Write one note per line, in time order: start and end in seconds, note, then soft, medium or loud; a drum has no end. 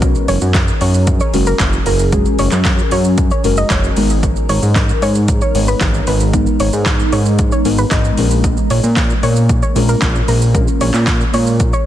0.00 0.15 B1 loud
0.00 3.93 F#3 medium
0.00 0.76 G#3 medium
0.00 3.93 C#4 medium
0.00 0.76 C#4 medium
0.00 0.76 F#4 medium
0.00 3.93 G#4 medium
0.00 8.14 A#4 medium
0.00 0.76 A#4 loud
0.00 kick loud
0.00 closed hi-hat medium
0.00 shaker medium
0.15 shaker medium
0.28 0.38 F#1 loud
0.28 0.37 C#5 medium
0.28 open hi-hat medium
0.28 shaker medium
0.42 0.71 F#2 medium
0.42 shaker medium
0.55 kick loud
0.55 snare medium
0.55 clap loud
0.55 closed hi-hat medium
0.55 shaker medium
0.68 shaker medium
0.81 1.21 F#2 loud
0.81 0.90 C#5 medium
0.81 open hi-hat medium
0.81 shaker soft
0.94 shaker medium
1.07 kick loud
1.07 closed hi-hat medium
1.07 shaker medium
1.20 1.30 C#5 medium
1.20 shaker medium
1.33 1.53 F#1 loud
1.33 1.89 G#3 medium
1.33 1.89 C#4 medium
1.33 1.89 F#4 medium
1.33 1.89 A#4 medium
1.33 open hi-hat medium
1.33 shaker medium
1.47 1.56 A#4 medium
1.47 shaker medium
1.60 1.80 F#1 loud
1.60 kick loud
1.60 snare loud
1.60 clap loud
1.60 closed hi-hat medium
1.60 shaker medium
1.73 shaker medium
1.86 2.26 F#1 loud
1.86 1.95 A#4 medium
1.86 open hi-hat medium
1.86 shaker medium
1.99 shaker medium
2.12 2.86 G#3 medium
2.12 2.86 C#4 medium
2.12 2.86 F#4 medium
2.12 2.87 G#4 loud
2.12 kick loud
2.12 closed hi-hat medium
2.12 shaker medium
2.26 shaker soft
2.39 2.49 F#1 loud
2.39 2.48 C#5 medium
2.39 open hi-hat medium
2.39 shaker medium
2.52 2.82 F#2 medium
2.52 clap medium
2.52 shaker medium
2.65 kick loud
2.65 snare loud
2.65 clap loud
2.65 closed hi-hat medium
2.65 shaker medium
2.78 shaker soft
2.91 3.31 F#2 medium
2.91 3.01 C#5 medium
2.91 open hi-hat medium
2.91 shaker medium
3.04 shaker medium
3.18 kick loud
3.18 closed hi-hat medium
3.18 shaker medium
3.31 3.40 C#5 medium
3.31 shaker medium
3.44 3.64 F#1 loud
3.44 3.95 G#3 medium
3.44 3.97 C#4 medium
3.44 3.97 F#4 medium
3.44 3.96 A#4 medium
3.44 open hi-hat medium
3.44 shaker medium
3.57 3.67 D#5 medium
3.57 shaker medium
3.70 3.90 F#1 loud
3.70 4.08 C#5 medium
3.70 kick loud
3.70 snare loud
3.70 clap loud
3.70 closed hi-hat medium
3.70 shaker medium
3.83 shaker medium
3.97 4.36 G#1 loud
3.97 11.86 G#3 medium
3.97 4.81 G#3 medium
3.97 8.14 B3 medium
3.97 4.81 B3 medium
3.97 8.14 D#4 medium
3.97 4.81 D#4 medium
3.97 4.81 A#4 medium
3.97 open hi-hat medium
3.97 shaker medium
4.10 shaker medium
4.23 kick loud
4.23 closed hi-hat medium
4.23 shaker medium
4.36 shaker medium
4.49 4.59 G#1 loud
4.49 4.58 C#5 medium
4.49 open hi-hat medium
4.49 shaker medium
4.62 4.92 G#2 medium
4.62 shaker medium
4.76 kick loud
4.76 snare medium
4.76 clap loud
4.76 closed hi-hat medium
4.76 shaker medium
4.89 shaker medium
5.02 5.42 G#2 medium
5.02 5.11 C#5 medium
5.02 open hi-hat medium
5.02 shaker soft
5.15 shaker medium
5.28 kick loud
5.28 closed hi-hat medium
5.28 shaker medium
5.41 5.51 C#5 medium
5.41 shaker medium
5.55 5.75 G#1 loud
5.55 6.10 G#3 medium
5.55 6.10 B3 medium
5.55 6.10 D#4 medium
5.55 6.10 C#5 medium
5.55 open hi-hat medium
5.55 shaker medium
5.68 5.77 B4 medium
5.68 shaker medium
5.81 6.01 G#1 loud
5.81 kick loud
5.81 snare loud
5.81 clap loud
5.81 closed hi-hat medium
5.81 shaker medium
5.94 shaker medium
6.07 6.47 G#1 loud
6.07 6.16 B4 medium
6.07 open hi-hat medium
6.07 shaker medium
6.20 shaker medium
6.33 7.07 G#3 medium
6.33 7.07 B3 medium
6.33 7.07 D#4 medium
6.33 7.08 A#4 loud
6.33 kick loud
6.33 closed hi-hat medium
6.33 shaker medium
6.47 shaker medium
6.60 6.70 G#1 loud
6.60 6.69 C#5 medium
6.60 open hi-hat medium
6.60 shaker medium
6.73 7.03 G#2 medium
6.73 shaker medium
6.86 kick loud
6.86 snare medium
6.86 clap loud
6.86 closed hi-hat medium
6.86 shaker medium
7.00 shaker soft
7.12 7.52 G#2 loud
7.12 7.22 C#5 medium
7.12 open hi-hat medium
7.12 shaker medium
7.26 shaker medium
7.39 kick loud
7.39 closed hi-hat medium
7.39 shaker medium
7.52 7.61 C#5 medium
7.52 shaker medium
7.65 7.85 G#1 loud
7.65 8.16 G#3 medium
7.65 8.18 B3 medium
7.65 8.18 D#4 medium
7.65 8.17 A#4 medium
7.65 open hi-hat medium
7.65 shaker medium
7.78 7.87 B4 medium
7.78 shaker medium
7.91 8.11 G#1 loud
7.91 8.29 D#5 medium
7.91 kick loud
7.91 snare medium
7.91 clap loud
7.91 closed hi-hat medium
7.91 shaker medium
8.05 shaker medium
8.17 8.58 A#1 loud
8.17 9.02 G#3 medium
8.17 11.86 A#3 medium
8.17 9.02 C#4 medium
8.17 11.86 C#4 medium
8.17 9.02 F4 medium
8.17 9.02 A#4 medium
8.17 open hi-hat medium
8.17 shaker medium
8.31 shaker medium
8.44 kick loud
8.44 closed hi-hat medium
8.44 shaker medium
8.57 shaker medium
8.70 8.80 A#1 loud
8.70 8.80 C#5 medium
8.70 open hi-hat medium
8.70 shaker medium
8.84 9.13 A#2 medium
8.84 shaker medium
8.97 kick loud
8.97 snare loud
8.97 clap loud
8.97 closed hi-hat medium
8.97 shaker medium
9.10 shaker medium
9.23 9.63 A#2 loud
9.23 9.32 C#5 medium
9.23 open hi-hat medium
9.23 shaker medium
9.36 shaker medium
9.49 kick loud
9.49 closed hi-hat medium
9.49 shaker medium
9.62 9.72 C#5 medium
9.62 shaker medium
9.75 9.95 A#1 loud
9.75 10.31 G#3 medium
9.75 10.31 C#4 medium
9.75 10.31 F4 medium
9.75 10.31 A#4 medium
9.75 open hi-hat medium
9.75 shaker medium
9.89 9.98 A#4 medium
9.89 shaker medium
10.02 10.22 A#1 loud
10.02 kick loud
10.02 snare loud
10.02 clap loud
10.02 closed hi-hat medium
10.02 shaker medium
10.15 shaker medium
10.28 10.68 A#1 loud
10.28 10.37 A#4 medium
10.28 open hi-hat medium
10.28 shaker medium
10.42 shaker medium
10.54 11.28 G#3 medium
10.54 11.28 C#4 medium
10.54 11.28 F4 medium
10.54 11.29 A#4 loud
10.54 kick loud
10.54 closed hi-hat medium
10.54 shaker medium
10.68 shaker medium
10.81 10.91 A#1 loud
10.81 10.90 C#5 medium
10.81 open hi-hat medium
10.81 shaker medium
10.94 11.24 A#2 medium
10.94 clap medium
10.94 shaker medium
11.07 kick loud
11.07 snare medium
11.07 clap loud
11.07 closed hi-hat medium
11.07 shaker medium
11.21 shaker medium
11.33 11.73 A#2 loud
11.33 11.43 C#5 medium
11.33 open hi-hat medium
11.33 shaker soft
11.47 shaker medium
11.60 kick loud
11.60 closed hi-hat medium
11.60 shaker medium
11.73 11.82 C#5 medium
11.73 shaker medium